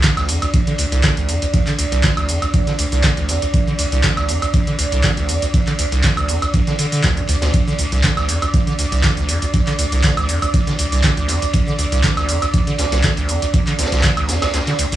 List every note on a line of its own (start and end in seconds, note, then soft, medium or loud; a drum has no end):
0.00 0.11 D3 loud
0.00 7.53 D5 medium
0.00 kick loud
0.00 snare loud
0.00 clap loud
0.00 closed hi-hat medium
0.00 ride medium
0.04 shaker soft
0.17 0.30 D2 medium
0.17 snare soft
0.17 closed hi-hat soft
0.17 high woodblock medium
0.17 shaker soft
0.29 0.40 F2 medium
0.29 open hi-hat loud
0.29 ride medium
0.29 shaker medium
0.42 0.46 D2 medium
0.42 closed hi-hat medium
0.42 high woodblock medium
0.42 shaker soft
0.53 0.61 D2 medium
0.53 kick loud
0.53 closed hi-hat medium
0.53 ride medium
0.53 shaker soft
0.67 0.74 D3 medium
0.67 closed hi-hat soft
0.67 shaker soft
0.78 0.86 D2 medium
0.78 open hi-hat loud
0.78 ride medium
0.78 shaker medium
0.92 1.02 C2 loud
0.92 closed hi-hat medium
0.92 shaker soft
1.03 1.11 D3 loud
1.03 kick loud
1.03 snare loud
1.03 clap loud
1.03 closed hi-hat medium
1.03 ride medium
1.03 shaker soft
1.17 1.30 D2 medium
1.17 closed hi-hat soft
1.17 ride soft
1.17 shaker soft
1.29 1.40 F2 medium
1.29 open hi-hat loud
1.29 ride medium
1.29 shaker medium
1.42 1.46 D2 medium
1.42 closed hi-hat medium
1.42 shaker soft
1.54 1.61 D2 medium
1.54 kick loud
1.54 closed hi-hat medium
1.54 ride medium
1.54 shaker soft
1.67 1.74 D3 medium
1.67 clap soft
1.67 closed hi-hat soft
1.67 ride soft
1.67 shaker soft
1.78 1.86 D2 medium
1.78 open hi-hat loud
1.78 ride medium
1.78 shaker medium
1.92 2.02 C2 loud
1.92 closed hi-hat medium
1.92 shaker soft
2.03 2.11 D3 loud
2.03 kick loud
2.03 snare loud
2.03 clap loud
2.03 closed hi-hat medium
2.03 ride loud
2.03 shaker soft
2.17 2.30 D2 medium
2.17 closed hi-hat soft
2.17 high woodblock medium
2.17 shaker soft
2.28 2.40 F2 medium
2.28 open hi-hat loud
2.28 ride medium
2.28 shaker medium
2.42 2.46 D2 medium
2.42 closed hi-hat medium
2.42 high woodblock medium
2.42 shaker soft
2.54 2.61 D2 medium
2.54 kick loud
2.54 closed hi-hat medium
2.54 ride medium
2.54 shaker soft
2.67 2.74 D3 medium
2.67 snare soft
2.67 closed hi-hat soft
2.67 shaker soft
2.79 2.86 D2 medium
2.79 open hi-hat loud
2.79 ride medium
2.79 shaker medium
2.92 3.02 C2 loud
2.92 open hi-hat medium
2.92 shaker soft
3.03 3.11 D3 loud
3.03 kick loud
3.03 snare loud
3.03 clap loud
3.03 closed hi-hat medium
3.03 ride medium
3.03 shaker soft
3.17 3.30 D2 medium
3.17 closed hi-hat soft
3.17 shaker soft
3.28 3.40 F2 medium
3.28 snare soft
3.28 open hi-hat loud
3.28 ride medium
3.28 shaker medium
3.42 3.46 D2 medium
3.42 closed hi-hat medium
3.42 shaker soft
3.53 3.61 D2 medium
3.53 kick loud
3.53 closed hi-hat medium
3.53 ride medium
3.53 shaker soft
3.67 3.74 D3 medium
3.67 ride soft
3.67 shaker soft
3.78 3.86 D2 medium
3.78 open hi-hat loud
3.78 ride medium
3.78 shaker medium
3.92 4.02 C2 loud
3.92 closed hi-hat medium
3.92 shaker soft
4.03 4.11 D3 loud
4.03 kick loud
4.03 snare loud
4.03 clap loud
4.03 closed hi-hat medium
4.03 ride medium
4.03 shaker soft
4.17 4.30 D2 medium
4.17 snare soft
4.17 closed hi-hat soft
4.17 high woodblock medium
4.17 shaker soft
4.28 4.40 F2 medium
4.28 open hi-hat loud
4.28 ride medium
4.28 shaker medium
4.42 4.46 D2 medium
4.42 closed hi-hat medium
4.42 high woodblock medium
4.42 shaker soft
4.54 4.61 D2 medium
4.54 kick loud
4.54 closed hi-hat medium
4.54 ride loud
4.54 shaker soft
4.67 4.74 D3 medium
4.67 closed hi-hat soft
4.67 shaker soft
4.79 4.86 D2 medium
4.79 open hi-hat loud
4.79 ride medium
4.79 shaker medium
4.92 5.02 C2 loud
4.92 closed hi-hat medium
4.92 shaker soft
5.03 5.11 D3 loud
5.03 kick loud
5.03 snare loud
5.03 clap loud
5.03 closed hi-hat medium
5.03 ride medium
5.03 shaker soft
5.17 5.30 D2 medium
5.17 closed hi-hat soft
5.17 ride soft
5.17 shaker soft
5.29 5.40 F2 medium
5.29 open hi-hat loud
5.29 ride medium
5.29 shaker medium
5.42 5.46 D2 medium
5.42 closed hi-hat medium
5.42 shaker soft
5.54 5.61 D2 medium
5.54 kick loud
5.54 closed hi-hat medium
5.54 ride loud
5.54 shaker soft
5.67 5.74 D3 medium
5.67 clap soft
5.67 closed hi-hat soft
5.67 ride soft
5.67 shaker soft
5.79 5.86 D2 medium
5.79 open hi-hat loud
5.79 ride medium
5.79 shaker medium
5.92 6.02 C2 loud
5.92 closed hi-hat medium
5.92 shaker soft
6.03 6.11 D3 loud
6.03 kick loud
6.03 snare loud
6.03 clap loud
6.03 closed hi-hat medium
6.03 ride medium
6.03 shaker soft
6.17 6.30 D2 medium
6.17 closed hi-hat soft
6.17 high woodblock medium
6.17 shaker soft
6.28 6.40 F2 medium
6.28 open hi-hat loud
6.28 ride medium
6.28 shaker medium
6.42 6.46 D2 medium
6.42 closed hi-hat medium
6.42 high woodblock medium
6.42 shaker soft
6.54 6.61 D2 medium
6.54 kick loud
6.54 closed hi-hat medium
6.54 ride medium
6.54 shaker soft
6.67 6.74 D3 medium
6.67 snare soft
6.67 closed hi-hat soft
6.67 shaker soft
6.79 6.86 D3 medium
6.79 open hi-hat loud
6.79 ride medium
6.79 shaker medium
6.92 7.02 D3 medium
6.92 open hi-hat medium
6.92 shaker soft
7.03 7.19 D2 medium
7.03 kick loud
7.03 snare loud
7.03 clap loud
7.03 closed hi-hat medium
7.03 shaker soft
7.16 7.21 A2 loud
7.16 closed hi-hat soft
7.16 ride soft
7.16 shaker soft
7.27 7.36 D2 loud
7.27 open hi-hat loud
7.27 ride medium
7.27 shaker medium
7.42 7.52 D2 loud
7.42 snare loud
7.42 closed hi-hat medium
7.42 ride medium
7.42 shaker soft
7.54 7.61 D2 medium
7.54 14.96 D5 medium
7.54 kick loud
7.54 closed hi-hat medium
7.54 ride loud
7.54 shaker soft
7.67 7.74 D3 medium
7.67 ride soft
7.67 shaker soft
7.78 7.86 D2 medium
7.78 open hi-hat loud
7.78 ride medium
7.78 shaker medium
7.92 8.02 C2 loud
7.92 closed hi-hat soft
7.92 shaker soft
8.03 8.11 D3 loud
8.03 kick loud
8.03 snare loud
8.03 clap loud
8.03 closed hi-hat medium
8.03 ride loud
8.03 shaker soft
8.17 8.30 D2 medium
8.17 snare soft
8.17 closed hi-hat soft
8.17 high woodblock medium
8.17 shaker soft
8.29 8.40 F2 medium
8.29 open hi-hat loud
8.29 ride medium
8.29 shaker medium
8.42 8.46 D2 medium
8.42 closed hi-hat medium
8.42 high woodblock medium
8.42 shaker soft
8.54 8.61 D2 medium
8.54 kick loud
8.54 closed hi-hat medium
8.54 ride medium
8.54 shaker soft
8.67 8.74 D3 medium
8.67 closed hi-hat soft
8.67 shaker soft
8.79 8.86 D2 medium
8.79 open hi-hat loud
8.79 ride medium
8.79 shaker medium
8.92 9.02 C2 loud
8.92 closed hi-hat medium
8.92 shaker soft
9.03 9.11 D3 loud
9.03 kick loud
9.03 snare loud
9.03 clap loud
9.03 closed hi-hat medium
9.03 ride medium
9.03 shaker soft
9.17 9.30 D2 medium
9.17 closed hi-hat soft
9.17 ride soft
9.17 shaker soft
9.29 9.40 F2 medium
9.29 open hi-hat loud
9.29 ride medium
9.29 shaker medium
9.42 9.46 D2 medium
9.42 closed hi-hat medium
9.42 shaker soft
9.54 9.61 D2 medium
9.54 kick loud
9.54 closed hi-hat medium
9.54 ride medium
9.54 shaker soft
9.67 9.74 D3 medium
9.67 clap soft
9.67 closed hi-hat soft
9.67 ride soft
9.67 shaker soft
9.79 9.86 D2 medium
9.79 open hi-hat loud
9.79 ride medium
9.79 shaker medium
9.92 10.02 C2 loud
9.92 closed hi-hat medium
9.92 shaker soft
10.03 10.11 D3 loud
10.03 kick loud
10.03 snare loud
10.03 clap loud
10.03 closed hi-hat medium
10.03 ride loud
10.03 shaker soft
10.17 10.30 D2 medium
10.17 closed hi-hat soft
10.17 high woodblock medium
10.17 shaker soft
10.29 10.40 F2 medium
10.29 open hi-hat loud
10.29 ride medium
10.29 shaker medium
10.42 10.46 D2 medium
10.42 closed hi-hat medium
10.42 high woodblock medium
10.42 shaker soft
10.54 10.61 D2 medium
10.54 kick loud
10.54 closed hi-hat medium
10.54 ride loud
10.54 shaker soft
10.67 10.74 D3 medium
10.67 snare soft
10.67 closed hi-hat soft
10.67 shaker soft
10.78 10.86 D2 medium
10.78 open hi-hat loud
10.78 ride medium
10.78 shaker medium
10.92 11.02 C2 loud
10.92 open hi-hat medium
10.92 shaker soft
11.03 11.11 D3 loud
11.03 kick loud
11.03 snare loud
11.03 clap loud
11.03 closed hi-hat medium
11.03 ride medium
11.03 shaker soft
11.17 11.30 D2 medium
11.17 closed hi-hat soft
11.17 shaker soft
11.28 11.40 F2 medium
11.28 snare soft
11.28 open hi-hat loud
11.28 ride medium
11.28 shaker medium
11.42 11.46 D2 medium
11.42 closed hi-hat medium
11.42 shaker soft
11.53 11.61 D2 medium
11.53 kick loud
11.53 closed hi-hat medium
11.53 ride medium
11.53 shaker soft
11.66 11.74 D3 medium
11.66 ride soft
11.66 shaker soft
11.78 11.86 D2 medium
11.78 open hi-hat loud
11.78 ride medium
11.78 shaker medium
11.92 12.02 C2 loud
11.92 closed hi-hat medium
11.92 shaker soft
12.03 12.11 D3 loud
12.03 kick loud
12.03 snare loud
12.03 clap loud
12.03 closed hi-hat medium
12.03 ride loud
12.03 shaker soft
12.17 12.30 D2 medium
12.17 snare soft
12.17 closed hi-hat soft
12.17 high woodblock medium
12.17 shaker soft
12.29 12.40 F2 medium
12.29 open hi-hat loud
12.29 ride medium
12.29 shaker medium
12.42 12.46 D2 medium
12.42 closed hi-hat medium
12.42 high woodblock medium
12.42 shaker soft
12.53 12.61 D2 medium
12.53 kick loud
12.53 closed hi-hat medium
12.53 ride medium
12.53 shaker medium
12.67 12.74 D3 medium
12.67 closed hi-hat soft
12.67 shaker soft
12.78 12.86 D2 medium
12.78 snare loud
12.78 open hi-hat loud
12.78 ride medium
12.78 shaker medium
12.92 13.02 C2 loud
12.92 snare loud
12.92 closed hi-hat medium
12.92 ride medium
12.92 shaker soft
13.03 13.11 D3 loud
13.03 kick loud
13.03 snare loud
13.03 clap loud
13.03 closed hi-hat medium
13.03 ride medium
13.03 shaker soft
13.17 13.30 D2 medium
13.17 closed hi-hat soft
13.17 ride soft
13.17 shaker soft
13.29 13.40 F2 medium
13.29 open hi-hat medium
13.29 ride medium
13.29 shaker medium
13.42 13.46 D2 medium
13.42 closed hi-hat medium
13.42 shaker soft
13.54 13.61 D2 medium
13.54 kick loud
13.54 closed hi-hat medium
13.54 ride medium
13.54 shaker soft
13.67 13.74 D3 medium
13.67 clap soft
13.67 closed hi-hat soft
13.67 ride soft
13.67 shaker soft
13.79 13.86 D2 medium
13.79 snare medium
13.79 open hi-hat loud
13.79 ride medium
13.79 shaker medium
13.85 snare loud
13.85 ride medium
13.92 14.02 C2 loud
13.92 snare medium
13.92 closed hi-hat medium
13.92 ride medium
13.92 shaker soft
13.98 snare medium
13.98 ride medium
14.03 14.11 D3 loud
14.03 kick loud
14.03 snare loud
14.03 clap loud
14.03 closed hi-hat medium
14.03 ride medium
14.03 shaker soft
14.17 14.30 D2 medium
14.17 closed hi-hat soft
14.17 high woodblock medium
14.17 shaker soft
14.29 14.40 F2 medium
14.29 snare loud
14.29 open hi-hat loud
14.29 ride medium
14.29 shaker medium
14.41 14.46 D2 medium
14.41 snare loud
14.41 closed hi-hat medium
14.41 ride medium
14.41 high woodblock medium
14.41 shaker soft
14.54 14.61 D2 medium
14.54 snare loud
14.54 closed hi-hat medium
14.54 ride medium
14.54 shaker soft
14.67 14.74 D3 medium
14.67 snare soft
14.67 closed hi-hat soft
14.67 shaker soft
14.79 14.86 D2 medium
14.79 open hi-hat loud
14.79 ride medium
14.79 shaker medium
14.92 14.96 C2 loud
14.92 open hi-hat medium
14.92 shaker soft